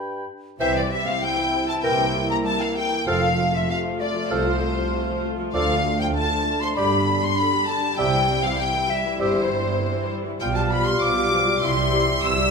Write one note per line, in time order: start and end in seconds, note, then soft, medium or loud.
0.00 0.25 G2 medium
0.00 0.26 G5 medium
0.00 0.26 B5 medium
0.60 1.12 C2 medium
0.60 1.12 C3 medium
0.60 0.75 C3 medium
0.60 0.82 E3 medium
0.60 1.80 C4 medium
0.60 3.03 E4 medium
0.60 0.82 C5 medium
0.60 0.66 E5 medium
0.60 0.75 E5 medium
0.60 0.82 G5 medium
0.75 0.91 E3 medium
0.75 0.91 D5 medium
0.75 0.93 D5 medium
0.75 0.91 D5 medium
0.91 1.07 G3 medium
0.91 1.06 E5 medium
0.91 1.08 E5 medium
0.91 1.07 E5 medium
1.06 1.22 C4 medium
1.06 1.21 F5 medium
1.06 1.22 F5 medium
1.21 1.37 G3 medium
1.21 1.68 G5 medium
1.21 1.67 G5 medium
1.21 1.69 G5 medium
1.37 1.53 E3 medium
1.52 1.68 C3 medium
1.68 1.84 E3 soft
1.68 1.74 A5 medium
1.68 1.84 A5 medium
1.83 2.35 C2 medium
1.83 1.98 C3 medium
1.83 2.35 C3 medium
1.83 2.05 E3 medium
1.83 3.08 A#3 medium
1.83 2.05 A#4 medium
1.83 2.29 G5 medium
1.83 2.06 G5 medium
1.83 2.29 G5 medium
1.99 2.15 E3 medium
2.14 2.30 G3 soft
2.29 2.45 A#3 medium
2.29 2.35 A#5 medium
2.29 2.37 A#5 medium
2.45 2.61 G3 medium
2.45 2.51 A5 medium
2.45 2.60 A5 medium
2.45 2.61 A5 medium
2.60 2.76 E3 medium
2.60 2.77 F5 medium
2.60 2.76 F5 medium
2.60 2.77 F5 medium
2.76 2.92 C3 medium
2.76 3.09 G5 medium
2.76 3.07 G5 medium
2.91 3.07 E3 soft
3.07 3.59 F1 medium
3.07 3.59 F2 medium
3.07 3.22 C3 medium
3.07 3.29 F3 medium
3.07 6.77 A3 medium
3.07 6.76 F4 medium
3.07 5.54 F4 medium
3.07 3.29 A4 medium
3.07 3.56 F5 medium
3.07 3.29 F5 medium
3.07 3.54 F5 medium
3.22 3.38 F3 medium
3.39 3.54 A3 medium
3.54 3.69 F3 medium
3.54 3.71 E5 medium
3.54 3.61 E5 medium
3.54 3.70 E5 medium
3.69 3.85 C3 medium
3.69 4.02 F5 medium
3.69 3.78 F5 medium
3.85 4.00 F3 soft
4.00 4.16 A3 medium
4.00 4.32 D5 medium
4.00 4.30 D5 medium
4.00 4.09 D5 medium
4.16 4.31 F3 soft
4.31 4.82 C2 medium
4.31 4.46 C3 medium
4.31 4.52 F3 medium
4.31 4.52 A4 medium
4.31 5.23 C5 medium
4.31 5.21 C5 medium
4.31 5.24 C5 medium
4.31 4.52 F5 medium
4.47 4.62 F3 medium
4.63 4.78 A3 soft
4.78 4.93 F3 medium
4.94 5.09 C3 medium
5.08 5.24 F3 medium
5.25 5.39 A3 medium
5.39 5.54 F3 medium
5.54 6.05 D2 medium
5.54 5.68 D3 medium
5.54 5.75 F3 medium
5.54 7.82 D4 medium
5.54 5.76 A4 medium
5.54 5.75 D5 medium
5.54 6.01 F5 medium
5.54 5.97 F5 medium
5.70 5.85 F3 medium
5.85 6.00 A3 medium
6.00 6.15 F3 medium
6.00 6.14 G5 medium
6.00 6.06 G5 medium
6.15 6.31 D3 medium
6.15 6.62 A5 medium
6.15 6.61 A5 medium
6.31 6.46 F3 medium
6.47 6.62 A3 soft
6.60 6.77 F3 soft
6.60 6.76 C6 medium
6.60 6.68 C6 medium
6.75 7.27 G1 medium
6.75 7.27 G2 medium
6.75 6.91 D3 medium
6.75 6.98 G3 medium
6.75 10.37 G3 medium
6.75 7.96 D4 medium
6.75 6.99 G4 medium
6.75 6.98 D5 medium
6.75 7.21 B5 medium
6.75 7.22 B5 medium
6.92 7.07 G3 medium
7.08 7.23 D3 medium
7.21 7.38 G3 medium
7.21 7.37 C6 medium
7.21 7.28 C6 medium
7.21 7.38 C6 medium
7.36 7.53 D3 medium
7.36 7.67 B5 medium
7.36 7.68 B5 medium
7.36 7.69 B5 medium
7.53 7.68 G3 medium
7.67 7.83 D3 medium
7.67 7.98 A5 medium
7.67 7.99 A5 medium
7.82 7.98 G3 medium
7.97 8.49 C2 medium
7.97 8.49 C3 medium
7.97 8.13 C3 medium
7.97 8.20 G3 medium
7.97 10.37 E4 medium
7.97 8.21 G4 medium
7.97 8.19 E5 medium
7.97 8.43 G5 medium
7.97 8.46 G5 medium
8.14 8.29 E3 medium
8.29 8.44 G3 medium
8.43 8.59 E3 medium
8.43 8.59 F5 medium
8.43 8.62 F5 medium
8.43 8.59 F5 medium
8.59 8.74 C3 medium
8.59 8.67 G5 medium
8.59 8.90 G5 medium
8.59 8.91 G5 medium
8.74 8.89 E3 medium
8.89 9.04 G3 soft
8.89 9.22 E5 medium
8.89 8.98 E5 medium
8.89 9.20 E5 medium
9.04 9.19 E3 soft
9.19 9.70 G1 medium
9.19 9.70 G2 medium
9.19 9.33 C3 medium
9.19 9.41 G3 medium
9.19 9.42 G4 medium
9.19 10.08 C5 medium
9.19 10.11 C5 medium
9.19 10.09 C5 medium
9.19 9.41 E5 medium
9.34 9.49 E3 medium
9.49 9.65 G3 medium
9.64 9.80 E3 medium
9.79 9.95 C3 medium
9.94 10.10 E3 medium
10.09 10.25 G3 medium
10.24 10.40 E3 medium
10.40 10.95 B1 medium
10.40 10.95 B2 medium
10.40 10.55 F3 medium
10.40 12.51 G3 medium
10.40 10.55 F4 medium
10.40 11.59 F4 medium
10.40 12.51 G4 medium
10.40 11.64 F5 medium
10.40 10.47 G5 medium
10.40 10.55 G5 medium
10.40 10.58 G5 medium
10.54 10.70 G3 medium
10.54 10.71 G4 medium
10.54 10.71 A5 medium
10.54 10.73 A5 medium
10.54 10.62 A5 medium
10.70 10.86 F3 medium
10.70 10.86 F4 medium
10.70 10.88 B5 medium
10.70 10.86 B5 medium
10.70 10.87 B5 medium
10.86 11.02 G3 medium
10.86 11.02 G4 medium
10.86 11.03 C6 medium
10.86 11.02 C6 medium
11.00 11.55 B1 medium
11.00 11.55 B2 medium
11.00 11.15 F3 medium
11.00 11.15 F4 medium
11.00 11.63 D6 medium
11.00 11.62 D6 medium
11.16 11.32 G3 medium
11.16 11.32 G4 medium
11.31 11.47 F3 medium
11.31 11.47 F4 medium
11.46 11.62 G3 soft
11.46 11.62 G4 soft
11.61 12.17 C2 medium
11.61 12.16 C3 medium
11.61 11.76 E3 medium
11.61 11.76 E4 medium
11.61 12.51 E4 medium
11.61 12.51 E5 medium
11.61 12.22 C6 medium
11.61 12.23 C6 medium
11.61 12.24 C6 medium
11.76 11.92 G3 medium
11.76 11.92 G4 medium
11.91 12.08 E3 medium
11.91 12.08 E4 soft
12.07 12.23 G3 medium
12.07 12.23 G4 medium
12.23 12.51 C2 medium
12.23 12.51 C3 medium
12.23 12.38 E3 medium
12.23 12.38 E4 medium
12.23 12.51 E6 loud
12.23 12.51 E6 medium
12.38 12.51 G3 medium
12.38 12.51 G4 medium